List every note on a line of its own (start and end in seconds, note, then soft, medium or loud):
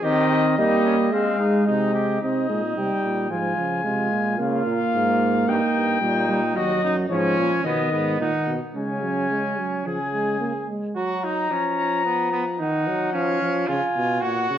0.03 0.54 D#3 loud
0.03 0.54 C4 medium
0.03 0.30 G4 medium
0.03 0.54 D#5 loud
0.30 0.43 G4 medium
0.57 1.12 G3 loud
0.57 1.14 A#3 loud
0.57 0.84 D#4 medium
0.57 1.14 D#5 medium
0.85 0.97 C#4 medium
1.12 1.66 G#3 loud
1.12 2.21 G#3 medium
1.12 1.39 C4 medium
1.12 1.67 F5 medium
1.39 1.66 D#4 medium
1.67 2.21 C3 medium
1.67 1.93 D#4 medium
1.67 2.21 D#5 medium
1.94 2.21 G4 medium
2.22 2.48 C3 medium
2.22 2.48 C4 medium
2.22 3.27 D#4 medium
2.22 2.73 D#5 medium
2.49 2.76 A#2 medium
2.49 2.62 G#3 medium
2.76 2.89 C3 medium
2.76 3.30 G3 medium
2.76 3.32 G5 medium
3.04 3.32 A#2 medium
3.30 3.57 G#2 medium
3.30 3.57 F3 medium
3.30 3.84 F4 medium
3.30 4.39 G#5 medium
3.58 3.86 C#3 medium
3.58 3.84 F3 medium
3.84 4.11 C3 medium
3.84 4.38 G#3 medium
3.84 4.37 F4 medium
4.12 4.41 A#2 medium
4.38 4.66 C#3 loud
4.38 5.98 A#3 medium
4.38 5.45 F4 medium
4.38 5.50 F5 medium
4.66 4.78 A#2 medium
4.93 5.46 G#2 medium
5.47 5.59 G2 loud
5.47 6.01 D#4 medium
5.47 6.55 G5 medium
5.75 6.01 G2 medium
6.01 6.55 A#2 medium
6.01 6.28 G3 medium
6.01 6.58 D#4 medium
6.29 6.41 G3 medium
6.55 6.83 D#2 medium
6.55 7.09 F#3 medium
6.55 6.83 F#4 loud
6.55 6.94 D#5 loud
6.83 7.10 F#2 medium
6.83 6.96 D#4 medium
7.10 7.37 G#2 medium
7.10 7.63 F3 loud
7.10 7.64 C#4 loud
7.10 7.63 C#5 medium
7.38 7.50 A#2 medium
7.64 7.91 B2 medium
7.64 8.18 D#3 medium
7.64 7.92 B3 medium
7.64 8.18 D#5 medium
7.92 8.19 G#2 medium
7.92 8.19 B3 medium
8.19 8.32 A#2 medium
8.19 8.55 D#3 medium
8.19 8.55 D#4 medium
8.19 8.55 F#5 medium
8.47 8.59 B2 medium
8.74 9.56 C#3 medium
8.74 9.01 G#3 medium
8.74 9.88 C#4 medium
8.74 9.82 G#5 medium
9.03 9.30 F#3 medium
9.30 9.59 G#3 medium
9.58 9.85 F#3 medium
9.85 10.64 C#3 medium
9.85 9.98 F3 medium
9.85 10.69 G#4 medium
9.85 10.67 G#5 medium
10.14 10.40 G#3 medium
10.40 10.53 A#3 medium
10.69 10.96 G#3 medium
10.96 11.47 F#3 medium
10.96 11.26 F#4 loud
10.96 12.56 A#5 medium
11.24 11.53 D#4 medium
11.51 12.62 F3 medium
11.51 12.04 C#4 medium
12.05 12.32 B3 medium
12.32 12.45 B3 medium
12.59 12.89 D#3 medium
12.59 13.13 D#4 medium
12.59 13.16 F#5 medium
12.88 13.16 F#3 medium
13.13 13.41 F3 loud
13.13 13.69 C#4 loud
13.13 13.68 F5 medium
13.42 13.68 F3 medium
13.68 13.81 C#3 medium
13.68 14.23 F4 loud
13.68 14.24 G#5 medium
13.96 14.22 B2 medium
14.22 14.49 A#2 medium
14.22 14.58 F#4 loud
14.22 14.58 F#5 medium
14.50 14.58 C#3 medium